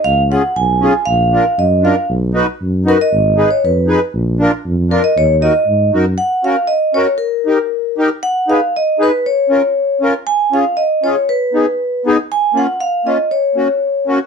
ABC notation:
X:1
M:2/4
L:1/16
Q:1/4=118
K:Ebm
V:1 name="Vibraphone"
f2 g2 a4 | f4 e2 f2 | z6 B ^d- | ^d3 _d c3 z |
z6 B e | d2 e4 z2 | [K:F#] f2 e2 d2 c2 | A6 z2 |
f2 e2 d2 B2 | c6 z2 | g2 e2 d2 c2 | B6 z2 |
g2 f2 e2 d2 | c6 z2 |]
V:2 name="Accordion"
z2 [DFA]2 z2 [DFA]2 | z2 [=DFB]2 z2 [DFB]2 | z2 [^D^F=B]2 z2 [DFB]2 | z2 [EAc]2 z2 [EAc]2 |
z2 [=DFB]2 z2 [DFB]2 | z2 [EGB]2 z2 [EGB]2 | [K:F#] z2 [CFA]2 z2 [CFA]2 | z2 [D=GA]2 z2 [DGA]2 |
z2 [DGB]2 z2 [DGB]2 | z2 [CEA]2 z2 [CEA]2 | z2 [CEG]2 z2 [CEG]2 | z2 [B,DG]2 z2 [B,DG]2 |
z2 [A,CE]2 z2 [A,CE]2 | z2 [A,CF]2 z2 [A,CF]2 |]
V:3 name="Tuba" clef=bass
D,,4 C,,4 | B,,,4 G,,4 | =B,,,4 ^F,,4 | A,,,4 F,,4 |
B,,,4 F,,4 | E,,4 A,,2 G,,2 | [K:F#] z8 | z8 |
z8 | z8 | z8 | z8 |
z8 | z8 |]